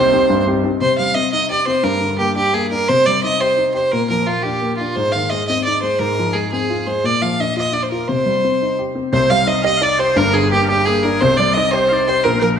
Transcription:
Already playing: grand piano C2 C3 C4 D#4 G4, five-string banjo C5, fiddle C5, bagpipes C5
0.12 grand piano C4 D#4 G4
0.30 grand piano G2
0.47 grand piano C4 D#4 G4
0.64 grand piano C4 D#4 G4
0.81 grand piano C3, fiddle C5
0.98 grand piano G3, fiddle F5
1.15 grand piano C4, fiddle D#5
1.32 grand piano D#4, fiddle D#5
1.50 grand piano G4, fiddle D5
1.67 grand piano C4, fiddle C5
1.83 grand piano G2, fiddle A#4
2.01 grand piano D3
2.18 grand piano A#3, fiddle G4
2.36 grand piano D4, fiddle G4
2.53 grand piano A#3, fiddle G#4
2.70 grand piano D4, fiddle A#4
2.88 grand piano C3, fiddle C5
3.06 grand piano G3, fiddle D5
3.23 grand piano D#4, fiddle D#5
3.40 grand piano G4, fiddle C5
3.57 grand piano D#4
3.74 grand piano G4, fiddle C5
3.91 grand piano A#2, fiddle A#4
4.09 grand piano F3, fiddle A#4
4.27 grand piano A#3, fiddle F4
4.43 grand piano D4, fiddle G4
4.62 grand piano A#3
4.77 fiddle F4
4.81 grand piano D4
4.95 grand piano G#2, fiddle C5
5.12 grand piano D#3, fiddle F5
5.30 grand piano G#3, fiddle D#5
5.48 grand piano C4, fiddle D#5
5.64 grand piano D#4, fiddle D5
5.82 grand piano G#3, fiddle C5
5.99 grand piano G#2, fiddle A#4
6.19 grand piano F3
6.33 grand piano G#3, fiddle G#4
6.52 grand piano C4, fiddle G#4
6.70 grand piano F4
6.86 grand piano G#3, fiddle C5
7.04 grand piano A#2, fiddle D5
7.22 grand piano F3, fiddle F5
7.40 grand piano D4, fiddle D#5
7.56 grand piano F4, fiddle D#5
7.72 grand piano D4, fiddle D5
7.83 fiddle C5
7.90 grand piano F4, fiddle A#4
8.08 grand piano C3, fiddle C5
8.26 grand piano G3
8.44 grand piano C4
8.62 grand piano D#4
8.79 grand piano G4
8.95 grand piano C4
9.12 grand piano C2 C3, bagpipes C5, five-string banjo C5, fiddle C5
9.30 grand piano G3, bagpipes F5, fiddle F5, five-string banjo F5
9.46 grand piano D#4, bagpipes D#5, five-string banjo D#5, fiddle D#5
9.62 grand piano G4, five-string banjo D#5, fiddle D#5, bagpipes D#5 F5
9.77 grand piano D#4, bagpipes F5
9.82 five-string banjo D5, bagpipes D5, fiddle D5
9.98 grand piano G4, bagpipes C5, fiddle C5, five-string banjo C5
10.16 grand piano G1 G2, fiddle A#4, bagpipes A#4, five-string banjo A#4
10.33 grand piano D3, five-string banjo G#4, fiddle G#4, bagpipes G#4
10.51 grand piano A#3, fiddle G4, five-string banjo G4, bagpipes G4
10.65 fiddle G4, five-string banjo G4, bagpipes G4 A#4
10.70 grand piano D4
10.85 grand piano A#3, fiddle G#4, five-string banjo G#4, bagpipes G#4
11.02 grand piano D4, fiddle A#4, five-string banjo A#4
11.21 grand piano C2 C3, fiddle C5, five-string banjo C5, bagpipes C5
11.37 grand piano G3, fiddle D5, five-string banjo D5, bagpipes D5
11.54 grand piano D#4, fiddle D#5, five-string banjo D#5
11.58 bagpipes D#5
11.71 grand piano G4, fiddle C5, five-string banjo C5, bagpipes C5
11.89 grand piano D#4, bagpipes F5
11.93 bagpipes D5
12.06 grand piano G4, fiddle C5, bagpipes C5, five-string banjo C5
12.24 grand piano A#1 A#2, fiddle A#4, five-string banjo A#4, bagpipes A#4
12.39 grand piano F3, fiddle A#4, five-string banjo A#4, bagpipes A#4 C5

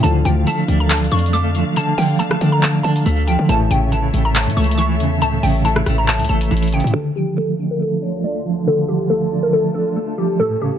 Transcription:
Already playing: string section A4
0.03 808-style bass D2, brass ensemble A2 D3 F3, string section D3 D4 F5, clean electric guitar D3, synth pluck A5, closed hi-hat
0.25 808-style bass D2, clean electric guitar F3, synth pluck G5, closed hi-hat
0.47 clean electric guitar A3, synth pluck A5, closed hi-hat
0.68 808-style bass D2, clean electric guitar D4, closed hi-hat
0.80 synth pluck A#5
0.90 synth pluck A5, clap, closed hi-hat
0.97 closed hi-hat
1.04 closed hi-hat
1.12 808-style bass F2, clean electric guitar D4, synth pluck C#6, closed hi-hat
1.19 closed hi-hat
1.26 closed hi-hat
1.33 clean electric guitar A3, synth pluck D6, closed hi-hat
1.55 clean electric guitar F3, closed hi-hat
1.76 clean electric guitar D3, synth pluck A5, closed hi-hat
1.98 808-style bass D3, clean electric guitar F3, synth pluck G5, open hi-hat
2.19 clean electric guitar A3, synth pluck A5, closed hi-hat
2.31 cross-stick
2.41 808-style bass D3, clean electric guitar D4, closed hi-hat
2.52 synth pluck A#5
2.63 synth pluck A5, clap, closed hi-hat
2.83 808-style bass D3, clean electric guitar D4, synth pluck A5, closed hi-hat
2.96 closed hi-hat
3.06 808-style bass D2, clean electric guitar A3, closed hi-hat
3.27 clean electric guitar F3, synth pluck G5, closed hi-hat
3.39 808-style bass D3
3.49 808-style bass A1, brass ensemble A2 C#3 E3, clean electric guitar A2, string section A3 A4 C#5 E5, synth pluck A5, closed hi-hat
3.71 808-style bass A1, clean electric guitar C#3, synth pluck G5, closed hi-hat
3.92 clean electric guitar E3, synth pluck A5, closed hi-hat
4.14 808-style bass A1, clean electric guitar A3, closed hi-hat
4.25 synth pluck A#5
4.35 synth pluck A5, clap, closed hi-hat
4.43 closed hi-hat
4.47 808-style bass A2, closed hi-hat
4.57 808-style bass C#2, clean electric guitar A3, synth pluck C#6, closed hi-hat
4.64 closed hi-hat
4.71 closed hi-hat
4.78 clean electric guitar E3, synth pluck C#6, closed hi-hat
5.00 808-style bass E2, clean electric guitar C#3, closed hi-hat
5.22 808-style bass C#2, clean electric guitar A2, synth pluck A5, closed hi-hat
5.43 808-style bass A1, clean electric guitar C#3, synth pluck G5, open hi-hat
5.65 clean electric guitar E3, synth pluck A5, closed hi-hat
5.76 cross-stick
5.86 808-style bass A1, clean electric guitar A3, cross-stick, closed hi-hat
5.98 synth pluck A#5
6.08 synth pluck A5, clap, closed hi-hat
6.14 closed hi-hat
6.19 808-style bass C#2, closed hi-hat
6.25 closed hi-hat
6.29 808-style bass A1, clean electric guitar A3, synth pluck A5, closed hi-hat
6.41 closed hi-hat
6.51 808-style bass A1, clean electric guitar E3, closed hi-hat
6.57 closed hi-hat
6.62 closed hi-hat
6.68 closed hi-hat
6.72 clean electric guitar C#3, synth pluck G5, closed hi-hat
6.80 closed hi-hat
6.84 808-style bass A2, closed hi-hat
6.94 string section D2 D3 F4 A4, clean electric guitar D3, synth pluck A4
7.16 clean electric guitar F3, synth pluck G4
7.37 clean electric guitar A3, synth pluck A4
7.59 clean electric guitar D4
7.71 synth pluck A#4
7.81 synth pluck A4
8.02 clean electric guitar D4, synth pluck C#5
8.24 clean electric guitar A3, synth pluck D5
8.45 clean electric guitar F3
8.67 clean electric guitar D3, synth pluck A4
8.88 clean electric guitar F3, synth pluck G4
9.10 clean electric guitar A3, synth pluck A4
9.32 clean electric guitar D4
9.43 synth pluck A#4
9.53 synth pluck A4
9.74 clean electric guitar D4, synth pluck A4
9.96 clean electric guitar A3
10.18 clean electric guitar F3, synth pluck G4
10.39 string section A2 E3 C#4, clean electric guitar A2, synth pluck A4
10.61 clean electric guitar C#3, synth pluck G4

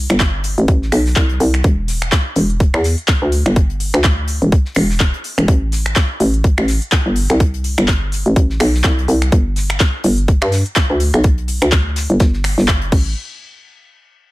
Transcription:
0.10 fm bass G1, finger snap, closed hi-hat
0.20 kick, snare, clap, closed hi-hat
0.44 closed hi-hat, open hi-hat
0.58 fm bass A1, closed hi-hat
0.68 fm bass A1, kick, closed hi-hat
0.82 snare
0.92 fm bass B1, finger snap, closed hi-hat, open hi-hat
1.06 snare, open hi-hat
1.16 fm bass C2, kick, snare, clap, closed hi-hat
1.29 closed hi-hat
1.40 fm bass C2, closed hi-hat, open hi-hat
1.54 finger snap, closed hi-hat
1.64 fm bass E1, kick, closed hi-hat
1.88 snare, closed hi-hat, open hi-hat
2.02 finger snap, closed hi-hat
2.12 kick, snare, clap, closed hi-hat
2.36 fm bass E1, closed hi-hat, open hi-hat
2.50 closed hi-hat
2.60 kick, closed hi-hat
2.74 fm bass E2, finger snap
2.84 snare, closed hi-hat, open hi-hat
2.98 closed hi-hat
3.08 kick, snare, clap, closed hi-hat
3.22 fm bass D2
3.32 closed hi-hat, open hi-hat
3.46 fm bass G1, finger snap, closed hi-hat
3.56 kick, closed hi-hat
3.70 closed hi-hat
3.80 closed hi-hat, open hi-hat
3.94 fm bass D2, finger snap, closed hi-hat
4.04 kick, snare, clap, closed hi-hat
4.28 closed hi-hat, open hi-hat
4.42 fm bass E1, closed hi-hat
4.52 kick, closed hi-hat
4.65 snare
4.75 fm bass E1, finger snap, closed hi-hat, open hi-hat
4.90 snare, open hi-hat
5.00 kick, snare, clap, closed hi-hat
5.14 closed hi-hat
5.24 closed hi-hat, open hi-hat
5.38 fm bass E1, finger snap, closed hi-hat
5.48 fm bass A1, kick, closed hi-hat
5.72 snare, closed hi-hat, open hi-hat
5.86 finger snap, closed hi-hat
5.96 kick, snare, clap, closed hi-hat
6.20 fm bass A1, closed hi-hat, open hi-hat
6.34 closed hi-hat
6.44 kick, closed hi-hat
6.58 fm bass A1, finger snap
6.68 snare, closed hi-hat, open hi-hat
6.82 closed hi-hat
6.92 kick, snare, clap, closed hi-hat
7.06 fm bass G1
7.16 closed hi-hat, open hi-hat
7.30 fm bass C2, finger snap, closed hi-hat
7.40 kick, closed hi-hat
7.54 closed hi-hat
7.64 closed hi-hat, open hi-hat
7.78 fm bass G1, finger snap, closed hi-hat
7.88 kick, snare, clap, closed hi-hat
8.12 closed hi-hat, open hi-hat
8.26 fm bass A1, closed hi-hat
8.36 fm bass A1, kick, closed hi-hat
8.50 snare
8.60 fm bass B1, finger snap, closed hi-hat, open hi-hat
8.74 snare, open hi-hat
8.84 fm bass C2, kick, snare, clap, closed hi-hat
8.99 closed hi-hat
9.08 fm bass C2, closed hi-hat, open hi-hat
9.22 finger snap, closed hi-hat
9.32 fm bass G1, kick, closed hi-hat
9.56 snare, closed hi-hat, open hi-hat
9.70 finger snap, closed hi-hat
9.80 kick, snare, clap, closed hi-hat
10.04 fm bass G1, closed hi-hat, open hi-hat
10.18 closed hi-hat
10.28 kick, closed hi-hat
10.42 fm bass G2, finger snap
10.52 snare, closed hi-hat, open hi-hat
10.66 closed hi-hat
10.76 kick, snare, clap, closed hi-hat
10.90 fm bass D2
11.00 closed hi-hat, open hi-hat
11.14 fm bass B1, finger snap, closed hi-hat
11.24 kick, closed hi-hat
11.38 closed hi-hat
11.48 closed hi-hat, open hi-hat
11.62 fm bass D2, finger snap, closed hi-hat
11.72 kick, snare, clap, closed hi-hat
11.96 snare, closed hi-hat, open hi-hat
12.10 fm bass G1, closed hi-hat
12.20 fm bass G1, kick, snare, closed hi-hat
12.33 snare
12.44 finger snap, closed hi-hat, open hi-hat
12.58 fm bass G1, snare, open hi-hat
12.68 kick, snare, clap, closed hi-hat
12.82 closed hi-hat
12.92 fm bass A1, kick, crash

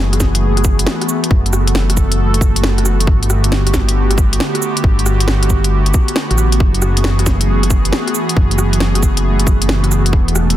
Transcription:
Already playing: detuned saw bass F#1, analog synth pad E3 A3 B3 F#4 G#4
0.13 cross-stick, closed hi-hat
0.20 kick, snare, cabasa
0.35 closed hi-hat
0.57 cross-stick, closed hi-hat
0.64 kick, cabasa
0.79 closed hi-hat
0.87 snare
1.01 cross-stick, closed hi-hat
1.09 cabasa
1.24 closed hi-hat
1.31 detuned saw bass F#1, analog synth pad A4, kick
1.46 closed hi-hat
1.53 cross-stick, cabasa
1.68 closed hi-hat
1.75 snare
1.90 cross-stick, closed hi-hat
1.97 kick, cabasa
2.12 closed hi-hat
2.34 closed hi-hat
2.41 detuned saw bass F#1, kick, cabasa
2.56 detuned saw bass F#1, closed hi-hat
2.64 snare
2.78 cross-stick, closed hi-hat
2.86 cross-stick, cabasa
3.00 closed hi-hat
3.06 detuned saw bass G1, analog synth pad D3 B3 G4, kick
3.23 closed hi-hat
3.30 cross-stick, cabasa
3.44 closed hi-hat
3.52 snare
3.67 cross-stick, closed hi-hat
3.74 kick, snare, cabasa
3.89 closed hi-hat
4.11 cross-stick, closed hi-hat
4.18 kick, cabasa
4.33 closed hi-hat
4.40 snare
4.55 cross-stick, closed hi-hat
4.62 cabasa
4.77 closed hi-hat
4.84 detuned saw bass G1, kick
4.99 closed hi-hat
5.06 cross-stick, cabasa
5.20 closed hi-hat
5.28 snare
5.43 cross-stick, closed hi-hat
5.50 kick, cabasa
5.64 closed hi-hat
5.86 closed hi-hat
5.94 kick, cabasa
6.08 closed hi-hat
6.16 snare
6.31 detuned saw bass A1, cross-stick, closed hi-hat
6.38 cross-stick, cabasa
6.52 closed hi-hat
6.60 detuned saw bass F#1, analog synth pad E3 A3 G#4, kick
6.74 closed hi-hat
6.82 cross-stick, cabasa
6.97 closed hi-hat
7.04 snare
7.19 cross-stick, closed hi-hat
7.26 kick, snare, cabasa
7.41 closed hi-hat
7.63 cross-stick, closed hi-hat
7.70 kick, cabasa
7.85 closed hi-hat
7.93 snare
8.08 cross-stick, closed hi-hat
8.15 cabasa
8.29 closed hi-hat
8.36 detuned saw bass F#1, kick
8.51 closed hi-hat
8.58 cross-stick, cabasa
8.73 closed hi-hat
8.80 snare
8.95 cross-stick, closed hi-hat
9.03 kick, cabasa
9.17 closed hi-hat
9.40 closed hi-hat
9.47 detuned saw bass F#1, kick, cabasa
9.62 detuned saw bass F#1, closed hi-hat
9.69 snare
9.84 cross-stick, closed hi-hat
9.92 cross-stick, cabasa
10.06 closed hi-hat
10.13 detuned saw bass E1, analog synth pad D4 A4, kick
10.28 closed hi-hat
10.36 cross-stick, cabasa
10.50 closed hi-hat

